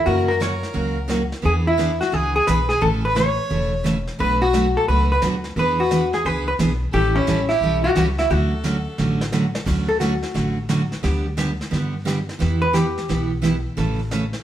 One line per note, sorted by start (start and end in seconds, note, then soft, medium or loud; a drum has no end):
0.05 0.62 F#2 medium
0.05 0.29 C#3 medium
0.05 0.29 F#3 medium
0.05 0.29 A#3 medium
0.05 0.29 C#4 medium
0.05 0.29 F#4 medium
0.05 0.27 A#4 medium
0.05 brush sweep soft
0.28 0.41 F#4 medium
0.28 0.42 A#4 medium
0.39 0.52 C#3 medium
0.39 0.53 F#3 medium
0.39 0.53 A#3 medium
0.39 0.53 C#4 medium
0.39 0.53 F#4 medium
0.39 1.09 A#4 medium
0.39 1.10 C#5 medium
0.39 snare medium
0.39 hi-hat pedal medium
0.63 snare soft
0.74 1.31 C#2 medium
0.74 0.97 C#3 medium
0.74 0.97 F#3 medium
0.74 0.97 A#3 medium
0.74 0.97 C#4 medium
0.74 0.97 F#4 medium
0.74 brush sweep soft
1.08 1.21 C#3 medium
1.08 1.21 F#3 medium
1.08 1.21 A#3 medium
1.08 1.21 C#4 medium
1.08 1.21 F#4 medium
1.08 snare medium
1.08 hi-hat pedal medium
1.32 snare soft
1.42 2.00 E2 medium
1.42 1.65 E3 medium
1.42 1.65 B3 medium
1.42 1.66 D4 medium
1.42 1.66 G#4 medium
1.42 1.51 G#4 medium
1.42 brush sweep soft
1.46 1.56 G#4 medium
1.67 1.99 E4 medium
1.77 1.90 E3 medium
1.77 1.90 B3 medium
1.77 1.90 D4 medium
1.77 1.90 G#4 medium
1.77 snare medium
1.77 hi-hat pedal soft
2.01 2.14 F#4 medium
2.01 2.16 F#4 medium
2.01 snare soft
2.12 2.42 C#2 medium
2.12 2.35 E3 medium
2.12 2.35 B3 medium
2.12 2.35 D4 medium
2.12 2.35 G#4 medium
2.12 2.34 G#4 medium
2.12 2.36 G#4 medium
2.12 brush sweep soft
2.36 2.48 G#4 loud
2.36 2.48 G#4 medium
2.47 2.77 B1 medium
2.47 2.59 E3 medium
2.47 2.59 B3 medium
2.47 2.59 D4 medium
2.47 2.59 G#4 medium
2.47 2.68 B4 medium
2.47 2.69 B4 medium
2.47 snare medium
2.47 hi-hat pedal medium
2.69 2.82 G#4 medium
2.69 2.81 G#4 medium
2.69 snare soft
2.81 3.37 A1 medium
2.81 3.03 C#3 medium
2.81 3.03 E3 medium
2.81 3.04 A3 medium
2.81 3.03 C#4 medium
2.81 3.04 A4 medium
2.81 2.88 A4 loud
2.81 3.04 A4 medium
2.81 brush sweep soft
3.05 3.16 B4 loud
3.05 3.17 B4 medium
3.15 3.27 C#3 medium
3.15 3.27 E3 medium
3.15 3.28 A3 medium
3.15 3.28 C#4 medium
3.15 3.28 A4 medium
3.15 3.81 C#5 medium
3.15 3.82 C#5 medium
3.15 snare medium
3.15 hi-hat pedal medium
3.50 4.05 E1 medium
3.50 3.72 C#3 soft
3.50 3.72 E3 medium
3.50 3.72 A3 medium
3.50 3.73 C#4 medium
3.50 3.73 A4 medium
3.50 brush sweep soft
3.84 3.96 C#3 medium
3.84 3.96 E3 medium
3.84 3.96 A3 medium
3.84 3.96 C#4 medium
3.84 3.97 A4 medium
3.84 snare medium
3.84 hi-hat pedal medium
4.07 snare soft
4.19 4.75 B1 medium
4.19 4.41 B2 medium
4.19 4.41 F#3 medium
4.19 4.41 A3 medium
4.19 4.41 D4 medium
4.19 4.41 F#4 medium
4.19 4.40 B4 medium
4.19 4.43 B4 loud
4.19 brush sweep medium
4.41 4.73 F#4 medium
4.41 4.77 F#4 medium
4.53 4.65 B2 medium
4.53 4.65 F#3 medium
4.53 4.65 A3 medium
4.53 4.65 D4 medium
4.53 4.66 F#4 medium
4.53 snare medium
4.53 hi-hat pedal medium
4.77 4.87 A4 medium
4.77 4.88 A4 medium
4.88 5.17 C#2 medium
4.88 5.10 B2 soft
4.88 5.10 F#3 medium
4.88 5.10 A3 medium
4.88 5.10 D4 medium
4.88 5.11 F#4 medium
4.88 5.11 B4 medium
4.88 5.09 B4 medium
4.88 brush sweep soft
5.12 5.22 B4 medium
5.22 5.51 D2 medium
5.22 5.34 B2 medium
5.22 5.34 F#3 medium
5.22 5.34 A3 medium
5.22 5.34 D4 medium
5.22 5.34 F#4 medium
5.22 snare medium
5.22 hi-hat pedal medium
5.44 snare soft
5.56 6.11 E2 medium
5.56 5.78 E3 medium
5.56 5.79 B3 medium
5.56 5.79 D4 medium
5.56 5.79 G#4 medium
5.56 5.78 B4 medium
5.56 5.81 B4 loud
5.56 brush sweep soft
5.80 6.14 F#4 medium
5.80 6.12 B4 medium
5.91 6.02 E3 medium
5.91 6.02 B3 medium
5.91 6.03 D4 medium
5.91 6.03 G#4 medium
5.91 snare medium
5.91 hi-hat pedal medium
6.13 6.27 G#4 medium
6.13 6.26 G#4 medium
6.13 snare soft
6.25 6.54 C#2 medium
6.25 6.47 E3 medium
6.25 6.47 B3 medium
6.25 6.47 D4 medium
6.25 6.47 G#4 medium
6.25 6.47 B4 medium
6.25 brush sweep medium
6.47 6.53 B4 medium
6.59 6.88 B1 medium
6.59 6.71 E3 medium
6.59 6.71 B3 medium
6.59 6.71 D4 medium
6.59 6.71 G#4 medium
6.59 snare medium
6.59 hi-hat pedal medium
6.92 7.21 A1 loud
6.92 7.15 E3 medium
6.92 7.15 G3 medium
6.92 7.15 C#4 medium
6.92 7.15 E4 medium
6.92 7.16 G4 loud
6.92 7.13 A4 medium
6.92 7.15 A4 medium
6.92 brush sweep soft
7.15 7.51 C#4 loud
7.15 7.47 E4 medium
7.27 7.57 A1 medium
7.27 7.39 E3 medium
7.27 7.39 G3 medium
7.27 7.39 C#4 medium
7.27 7.39 E4 medium
7.27 7.39 A4 medium
7.27 snare medium
7.27 hi-hat pedal medium
7.49 7.84 E4 medium
7.49 7.82 G4 medium
7.49 snare soft
7.61 7.90 B1 medium
7.61 7.84 E3 medium
7.61 7.84 G3 medium
7.61 7.85 C#4 medium
7.61 7.85 E4 medium
7.61 7.85 A4 medium
7.61 brush sweep medium
7.83 7.95 F#4 medium
7.83 7.94 G4 medium
7.95 8.25 C#2 medium
7.95 8.08 E3 medium
7.95 8.08 G3 medium
7.95 8.08 C#4 medium
7.95 8.08 E4 medium
7.95 8.03 F#4 medium
7.95 8.06 G4 medium
7.95 8.08 A4 medium
7.95 snare medium
7.95 hi-hat pedal medium
8.18 8.30 E4 medium
8.18 8.32 F#4 medium
8.18 snare soft
8.30 8.85 D2 loud
8.30 8.52 D3 medium
8.30 8.53 F#3 medium
8.30 8.52 A3 medium
8.30 8.53 C#4 medium
8.30 9.33 F#4 medium
8.30 8.53 F#4 medium
8.30 9.33 A4 medium
8.30 brush sweep soft
8.64 8.76 D3 medium
8.64 8.76 F#3 medium
8.64 8.76 A3 medium
8.64 8.76 C#4 medium
8.64 8.76 F#4 medium
8.64 snare medium
8.64 hi-hat pedal soft
8.98 9.53 A1 medium
8.98 9.20 D3 medium
8.98 9.21 F#3 medium
8.98 9.21 A3 medium
8.98 9.21 C#4 medium
8.98 9.21 F#4 medium
8.98 snare soft
9.21 snare medium
9.32 9.44 D3 medium
9.32 9.44 F#3 medium
9.32 9.44 A3 medium
9.32 9.45 C#4 medium
9.32 9.45 F#4 medium
9.32 snare medium
9.32 hi-hat pedal medium
9.55 snare medium
9.65 10.22 D2 medium
9.65 9.88 D3 medium
9.65 9.88 F#3 medium
9.65 9.89 A3 medium
9.65 9.89 C#4 medium
9.65 9.89 F#4 medium
9.65 brush sweep soft
9.65 kick medium
9.65 snare soft
9.65 crash medium
9.89 10.00 A4 medium
10.00 10.12 D3 medium
10.00 10.13 F#3 medium
10.00 10.13 A3 medium
10.00 10.13 C#4 medium
10.00 10.53 F#4 soft
10.00 10.13 F#4 medium
10.00 snare medium
10.00 hi-hat pedal medium
10.22 snare soft
10.34 10.90 A1 medium
10.34 10.57 D3 medium
10.34 10.57 F#3 medium
10.34 10.57 A3 medium
10.34 10.57 C#4 medium
10.34 10.57 F#4 medium
10.34 brush sweep medium
10.34 snare soft
10.69 10.81 D3 medium
10.69 10.81 F#3 medium
10.69 10.81 A3 medium
10.69 10.81 C#4 medium
10.69 10.81 F#4 medium
10.69 snare medium
10.69 hi-hat pedal medium
10.92 snare soft
11.03 11.59 D2 medium
11.03 11.25 D3 medium
11.03 11.25 G3 medium
11.03 11.25 B3 medium
11.03 11.26 D4 medium
11.03 11.26 G4 medium
11.03 brush sweep soft
11.03 snare soft
11.37 11.49 D3 medium
11.37 11.50 G3 medium
11.37 11.49 B3 medium
11.37 11.50 D4 medium
11.37 11.50 G4 medium
11.37 snare medium
11.37 hi-hat pedal medium
11.61 snare soft
11.71 12.27 G2 medium
11.71 11.93 D3 medium
11.71 11.94 G3 medium
11.71 11.94 B3 medium
11.71 11.94 D4 medium
11.71 11.94 G4 medium
11.71 brush sweep medium
11.71 snare soft
12.05 12.17 D3 medium
12.05 12.18 G3 medium
12.05 12.17 B3 medium
12.05 12.18 D4 medium
12.05 12.18 G4 medium
12.05 snare medium
12.05 hi-hat pedal medium
12.29 snare soft
12.39 12.96 E2 loud
12.39 12.62 E3 medium
12.39 12.62 B3 medium
12.39 12.62 E4 medium
12.39 12.62 G4 medium
12.39 brush sweep medium
12.39 snare soft
12.62 12.74 B4 loud
12.73 12.86 E3 medium
12.73 12.86 B3 medium
12.73 12.86 E4 medium
12.73 13.27 G4 medium
12.73 12.86 G4 medium
12.73 snare medium
12.73 hi-hat pedal medium
12.97 snare soft
13.08 13.64 B1 medium
13.08 13.31 E3 soft
13.08 13.31 B3 medium
13.08 13.31 E4 medium
13.08 13.31 G4 medium
13.08 brush sweep soft
13.08 snare soft
13.42 13.54 E3 medium
13.42 13.54 B3 medium
13.42 13.55 E4 medium
13.42 13.55 G4 medium
13.42 snare medium
13.42 hi-hat pedal medium
13.77 14.32 A1 medium
13.77 13.99 C#3 medium
13.77 13.99 E3 medium
13.77 13.99 A3 medium
13.77 14.00 C#4 medium
13.77 13.99 A4 medium
13.77 brush sweep soft
13.77 snare soft
14.11 14.23 C#3 medium
14.11 14.23 E3 medium
14.11 14.23 A3 medium
14.11 14.23 C#4 medium
14.11 14.24 A4 medium
14.11 snare medium
14.11 hi-hat pedal medium
14.33 snare soft